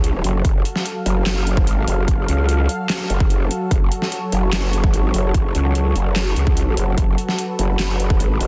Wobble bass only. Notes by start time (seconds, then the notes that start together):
Already playing: C#2
0.24 F#1
0.45 F#1
1.06 F#1
1.67 G#1
1.88 F#1
2.28 C#2
3.10 F#1
3.71 F#1
4.32 F#1
4.94 G#1
5.14 F#1
5.55 C#2
5.96 F#1
6.36 C#2
6.77 F#1
6.98 F#1
7.59 F#1
8.20 G#1
8.41 F#1